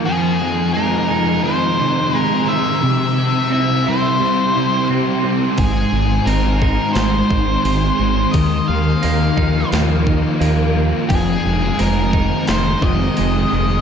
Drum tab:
HH |--------|--------|o-o-o-o-|o-o-o-o-|
SD |--------|--------|----o---|----o---|
BD |--------|--------|o--o-o--|o--o-o--|

HH |o-o-o-o-|
SD |----o---|
BD |o--o-o--|